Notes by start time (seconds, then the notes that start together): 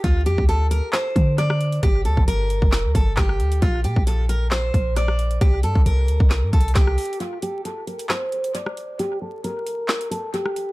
0.04 D2 F4, kick, closed hi-hat
0.26 F2 G4, closed hi-hat
0.38 D2, kick
0.49 A4, closed hi-hat
0.71 A#4, closed hi-hat
0.93 C5, snare, clap, closed hi-hat
1.16 D3, kick, closed hi-hat
1.38 D5, cross-stick, closed hi-hat
1.50 cross-stick
1.61 closed hi-hat
1.72 closed hi-hat
1.83 G1 G4, kick, closed hi-hat
2.05 D2 A4, closed hi-hat
2.17 G1, kick
2.28 G1 A#4, closed hi-hat
2.50 closed hi-hat
2.62 F1, kick
2.72 snare, clap, closed hi-hat
2.84 D2
2.95 G1 A4, kick, closed hi-hat
3.17 G1 G4, kick, cross-stick, snare, clap, closed hi-hat
3.29 cross-stick
3.40 D2, closed hi-hat
3.52 closed hi-hat
3.62 A#1 F4, kick, closed hi-hat
3.84 A#2 G4, closed hi-hat
3.96 A#1, kick
4.07 A4, closed hi-hat
4.29 A#4, closed hi-hat
4.51 C5, snare, clap, closed hi-hat
4.74 A#1, kick, closed hi-hat
4.96 D5, cross-stick, closed hi-hat
5.08 cross-stick
5.19 closed hi-hat
5.31 closed hi-hat
5.41 C2 G4, kick, closed hi-hat
5.63 G2 A4, closed hi-hat
5.75 C2, kick
5.86 C2 A#4, closed hi-hat
6.08 D2, closed hi-hat
6.20 C2, kick
6.30 snare, clap, closed hi-hat
6.43 G2
6.53 C2 A4, kick, closed hi-hat
6.61 closed hi-hat
6.68 closed hi-hat
6.75 C2 G4, kick, snare, clap, closed hi-hat
6.87 cross-stick
6.98 closed hi-hat, open hi-hat
7.05 closed hi-hat
7.13 closed hi-hat
7.20 F4, closed hi-hat
7.42 G4, closed hi-hat
7.65 A4, closed hi-hat
7.87 A#4, closed hi-hat
7.99 closed hi-hat
8.09 C5, snare, clap, closed hi-hat
8.32 closed hi-hat
8.44 closed hi-hat
8.55 D5, closed hi-hat
8.66 cross-stick
8.77 closed hi-hat
8.99 G4, closed hi-hat
9.22 A4
9.44 A#4, closed hi-hat
9.67 closed hi-hat
9.88 snare, clap, closed hi-hat
10.01 closed hi-hat
10.11 A4, closed hi-hat
10.34 G4, closed hi-hat
10.46 cross-stick
10.56 closed hi-hat